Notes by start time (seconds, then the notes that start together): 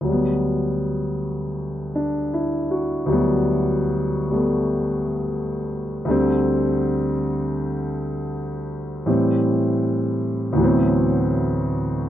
0.01 D2 F#3
0.08 G3 B3
1.95 D4
2.34 E4
2.71 F#4
3.06 D2 F#3 G3
3.12 B3
4.30 G3 A3 B3
6.05 D2 D3 G3
6.11 C4
9.06 A2 E3 G3 C4
10.53 D2 A2
10.57 E3 F#3
10.61 B3 C4